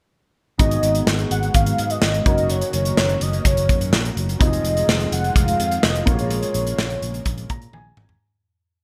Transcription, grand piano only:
0.58 2.22 B3 medium
0.58 2.23 D#4 medium
0.58 2.23 F#4 medium
0.58 2.23 G#4 medium
2.25 4.12 C#4 medium
2.25 4.13 D#4 medium
2.25 4.13 F#4 medium
2.25 4.14 A#4 medium
4.39 6.03 C4 medium
4.39 6.04 D#4 medium
4.39 6.04 F4 medium
4.39 4.47 G4 medium
4.47 6.07 G#4 medium
6.06 7.93 A#3 medium
6.06 7.93 C#4 medium
6.06 7.94 F4 medium
6.06 6.13 F#4 medium
6.14 7.97 G#4 medium
7.50 7.72 A#5 medium
7.74 8.18 G#5 medium

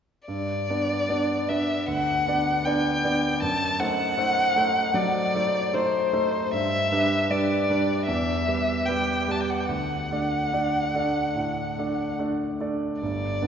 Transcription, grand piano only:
0.28 0.67 G2 soft
0.70 1.06 B3 soft
0.70 1.06 D4 soft
0.70 1.06 D5 soft
1.09 1.45 B3 soft
1.09 1.45 D4 soft
1.09 1.45 D5 soft
1.49 1.85 B3 soft
1.49 1.85 D4 soft
1.49 1.85 D5 soft
1.88 2.26 D2 soft
2.27 2.62 B3 soft
2.27 2.62 D4 soft
2.27 2.63 D5 soft
2.66 3.00 B3 soft
2.66 3.01 D4 soft
2.66 3.01 D5 soft
3.05 3.39 B3 soft
3.05 3.39 D4 soft
3.05 3.39 D5 soft
3.42 3.79 F#2 soft
3.80 4.15 A3 soft
3.80 4.15 D#4 soft
3.80 4.15 C5 soft
4.18 4.53 A3 soft
4.18 4.53 D#4 soft
4.18 4.54 C5 soft
4.56 4.92 A3 soft
4.56 4.92 D#4 soft
4.56 4.92 C5 soft
4.94 5.33 F#3 soft
5.35 5.70 A3 soft
5.35 5.70 D#4 soft
5.35 5.70 C5 soft
5.73 6.09 A3 soft
5.73 6.09 D#4 soft
5.73 6.10 C5 soft
6.13 6.49 A3 soft
6.13 6.49 D#4 soft
6.13 6.49 C5 soft
6.53 6.91 G2 soft
6.92 7.26 G3 soft
6.92 7.27 D4 soft
6.92 7.27 B4 soft
7.30 7.65 G3 soft
7.30 7.65 D4 soft
7.30 7.66 B4 soft
7.70 8.04 G3 soft
7.70 8.04 D4 soft
7.70 8.05 B4 soft
8.08 8.46 E2 soft
8.47 8.83 G3 soft
8.47 8.83 G4 soft
8.47 8.83 B4 soft
8.88 9.24 G3 soft
8.88 9.24 G4 soft
8.88 9.24 B4 soft
9.28 9.65 G3 soft
9.28 9.65 G4 soft
9.28 9.65 B4 soft
9.69 10.09 D2 soft
10.11 10.49 A3 soft
10.11 10.49 D4 soft
10.11 10.49 D5 soft
10.53 10.90 A3 soft
10.53 10.90 D4 soft
10.53 10.91 D5 soft
10.95 11.32 A3 soft
10.95 11.32 D4 soft
10.95 11.32 D5 soft
11.36 11.76 A2 soft
11.78 12.15 A3 soft
11.78 12.16 D4 soft
11.78 12.16 D5 soft
12.19 12.56 A3 soft
12.19 12.56 D4 soft
12.19 12.57 D5 soft
12.60 12.98 A3 soft
12.60 12.98 D4 soft
12.60 12.98 D5 soft
13.02 13.41 G1 soft
13.42 13.47 B3 soft
13.42 13.47 D4 soft
13.42 13.47 D5 soft

